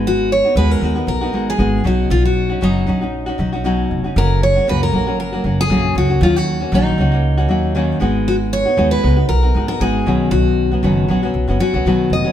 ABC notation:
X:1
M:4/4
L:1/16
Q:"Swing 16ths" 1/4=117
K:Blyd
V:1 name="Steel-string acoustic guitar"
F2 c2 B A3 A3 G3 F2 | E F3 D8- D2 z2 | A2 c2 B A3 A3 G3 F2 | E F3 D8- D2 z2 |
F2 c3 B3 A3 A G4 | F8- F2 F4 d2 |]
V:2 name="Nylon-string guitar"
[G,B,DF]3 [B,DF] [G,B,DF]2 [G,B,DF] [B,DF]2 [B,DF] [G,B,DF]2 [G,B,DF]2 [B,,F,CDF]2- | [B,,F,CDF]3 [CDF] [B,,F,CDF]2 [F,CDF] [CDF]2 [CDF] [F,CDF] [CDF] [B,,F,CDF]3 [CDF] | [F,,C,F,A,CF]3 [F,A,CF] [F,,C,F,A,CF]2 [F,A,CF] [F,A,CF]2 [F,A,CF] [F,A,CF]2 [F,,C,F,A,CF]3 [F,A,CF] | [D,F,A,CF]3 [A,CF] [D,F,A,CF]2 [F,A,CF] [A,CF]2 [A,CF] [F,A,CF]2 [D,F,A,CF]2 [G,B,DF]2- |
[G,B,DF]3 [B,DF] [G,B,DF]2 [G,B,DF] [B,DF]2 [B,DF] [G,B,DF] [B,DF] [G,B,DF]2 [B,,D,F,B,CF]2- | [B,,D,F,B,CF]3 [F,B,CF] [B,,D,F,B,CF]2 [F,B,CF] [F,B,CF]2 [F,B,CF] [F,B,CF] [F,B,CF] [B,,D,F,B,CF]3 [F,B,CF] |]
V:3 name="Upright bass" clef=bass
G,,,4 D,,2 D,,2 B,,,2 G,,,2 G,,,2 B,,,2 | B,,,4 F,,,2 A,,,4 B,,,4 E,,,2 | F,,,4 C,,2 A,,,2 F,,,2 F,,,2 A,,,2 C,,2 | D,,4 A,,,2 C,,4 D,,4 G,,,2- |
G,,,4 D,,2 C,,2 B,,,2 G,,,2 G,,,2 B,,,2 | B,,,4 F,,,2 A,,,2 B,,, F,,, z A,,, B,,,2 E,,, z |]